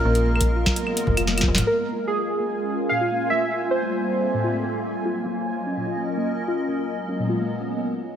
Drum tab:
HH |------x--------------x--------------------x-----------x-----------x-----------x-----------x-----|------------------------------------------------------------------------------------------------|------------------------------------------------------------------------------------------------|------------------------------------------------------------------------------------------------|
CL |------------------x-----------------x-----------x-----------------x-----------x-----------------|------------------------------------------------------------------------------------------------|------------------------------------------------------------------------------------------------|------------------------------------------------------------------------------------------------|
SD |------------------------------------o-----------------------------------o-------o-------o-------|------------------------------------------------------------------------------------------------|------------------------------------------------------------------------------------------------|------------------------------------------------------------------------------------------------|
T2 |------------------------------------------------------------o-----------------------------o-----|------------------------------------------------------------------------------------------------|------------------------------------------------------------------------------------------------|------------------------------------------------------------------------------------------------|
BD |---------------------o--------------o-----------------------o--------------------o--------------|------------------------------------------------------------------------------------------------|------------------------------------------------------------------------------------------------|------------------------------------------------------------------------------------------------|

HH |------------------------------------------------------------------------------------------------|
CL |------------------------------------------------------------------------------------------------|
SD |------------------------------------------------------------------------------------------------|
T2 |------------------------------------------------------------------------------------------------|
BD |------------------------------------------------------------------------------------------------|